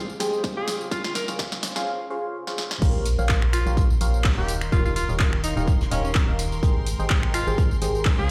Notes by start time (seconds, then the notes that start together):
Already playing: F4 G5
0.10 tambourine
0.20 G#3 G4 G#4 C5 D#5 G5, snare, open hi-hat, tambourine
0.33 tambourine
0.44 kick, snare, tambourine
0.57 C#3 F4 G#4 C5 C#5 F5
0.68 snare, open hi-hat, tambourine
0.81 tambourine
0.91 C#3 F4 G#4 C5 C#5 F5, kick, snare, tambourine
1.04 F4, snare
1.15 A#4, snare, open hi-hat, tambourine
1.28 C#3 F4 G#4 C5 C#5 F5, snare, tambourine
1.39 kick, snare, tambourine
1.52 snare
1.63 snare, open hi-hat, tambourine
1.76 C#3 F4 G#4 C5 C#5 F5, snare, tambourine
2.10 C#3 F4 G#4 C5 C#5 F5
2.47 C#3 F4 G#4 C5 C#5 F5, snare
2.58 snare
2.71 snare
2.82 A#1 A#3 G4 A#4 C5 C#5 F5 C6, kick, closed hi-hat, crash, tambourine
3.06 closed hi-hat, open hi-hat, tambourine
3.18 A#1 A#3 G4 A#4 C5 C#5 F5, tambourine
3.29 kick, snare, clap, closed hi-hat, tambourine
3.42 finger snap
3.53 F4, finger snap, closed hi-hat, open hi-hat, tambourine
3.66 A#1 A#3 G4 A#4 C5 C#5 F5, tambourine
3.77 kick, closed hi-hat, tambourine
3.90 tambourine
4.01 A#1 A#3 G4 A#4 C5 C#5 F5, closed hi-hat, open hi-hat, tambourine
4.14 tambourine
4.24 kick, snare, clap, open hi-hat, tambourine
4.37 D#1 D#3 G4 A#4 C#5 D#5 F5
4.48 closed hi-hat, open hi-hat, tambourine
4.61 finger snap, tambourine
4.72 D#1 D#3 F4 G4 A#4 C#5 D#5 F5, kick, closed hi-hat, tambourine
4.85 F4, closed hi-hat, tambourine
4.96 F4, snare, closed hi-hat, open hi-hat, tambourine
5.09 D#1 D#3 G4 A#4 C#5 D#5 F5, tambourine
5.19 kick, snare, clap, closed hi-hat, tambourine
5.33 finger snap
5.43 D#4, closed hi-hat, open hi-hat, tambourine
5.57 D#1 D#3 D#4 G4 A#4 C#5 D#5 F5, tambourine
5.68 kick, closed hi-hat, tambourine
5.81 snare, tambourine
5.91 D#1 D#3 C#4 G4 A#4 C#5 D#5 F5, closed hi-hat, open hi-hat, tambourine
6.04 C#4, closed hi-hat, tambourine
6.14 kick, snare, clap, closed hi-hat, tambourine
6.28 D#1 D#3 G4 A#4 C#5 D#5 F5, closed hi-hat
6.38 closed hi-hat, open hi-hat, tambourine
6.52 closed hi-hat, tambourine
6.63 G#1 G#3 G4 G#4 C5 D#5 G5, kick, closed hi-hat, tambourine
6.87 closed hi-hat, open hi-hat, tambourine
6.99 G#1 G#3 G4 G#4 C5 D#5 G5, tambourine
7.10 kick, snare, clap, closed hi-hat, tambourine
7.23 finger snap
7.34 F4, finger snap, closed hi-hat, open hi-hat, tambourine
7.47 G#1 G#3 G4 G#4 C5 D#5 G5, tambourine
7.58 kick, closed hi-hat, tambourine
7.71 tambourine
7.82 G#1 G#3 G4 G#4 C5 D#5 G5, closed hi-hat, open hi-hat, tambourine
7.95 tambourine
8.05 kick, snare, clap, open hi-hat, tambourine
8.18 C#2 C#3 F4 G#4 C5 C#5 F5